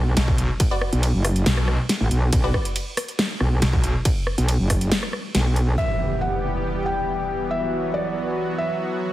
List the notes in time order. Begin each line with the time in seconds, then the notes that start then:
Already playing: B1
0.17 B1, snare, closed hi-hat, ride
0.28 kick
0.38 closed hi-hat
0.60 kick, closed hi-hat, ride
0.71 F#4 B4 D5
0.81 cross-stick
0.93 B1, closed hi-hat
1.03 closed hi-hat, ride
1.14 F#1
1.25 cross-stick, open hi-hat
1.36 closed hi-hat
1.46 B1, snare, closed hi-hat, ride
1.57 cross-stick
1.68 cross-stick
1.89 snare, closed hi-hat, ride
2.01 A1
2.11 B1, closed hi-hat
2.33 B1, kick, closed hi-hat, ride
2.44 F#4 B4 D5
2.54 kick, cross-stick
2.65 closed hi-hat
2.76 closed hi-hat, ride
2.97 cross-stick, open hi-hat
3.08 closed hi-hat
3.19 snare, closed hi-hat, ride
3.40 B1, cross-stick
3.62 B1, snare, closed hi-hat, ride
3.73 kick
3.84 closed hi-hat
4.05 kick, closed hi-hat, ride
4.27 cross-stick
4.38 B1, closed hi-hat
4.48 closed hi-hat, ride
4.60 F#1
4.70 kick, cross-stick, open hi-hat
4.81 closed hi-hat
4.92 snare, closed hi-hat, ride
5.03 cross-stick
5.13 cross-stick
5.35 B1, snare, closed hi-hat, ride
5.56 closed hi-hat
5.78 E3 G3 B3 G4 E5, impact
6.21 F#5
6.86 G5
7.50 F#3 B3 F#4 E5
7.94 D5
8.58 E5